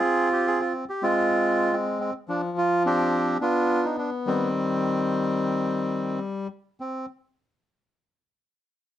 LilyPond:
\new Staff \with { instrumentName = "Bandoneon" } { \time 4/4 \key c \minor \tempo 4 = 107 << { aes'8 g'16 aes'16 f'8 g'16 f'4~ f'16 c'8 c'8 | d'8 f'8 g'4 f'8. ees'16 d'8 c'8~ | c'2. r4 | c'8 r2. r8 | } \\ { <c' f'>4. r16 <aes c'>2 r16 | f4 <c' d'>4 <b d'>4. <ees g>8~ | <ees g>2.~ <ees g>8 r8 | r1 | } >> }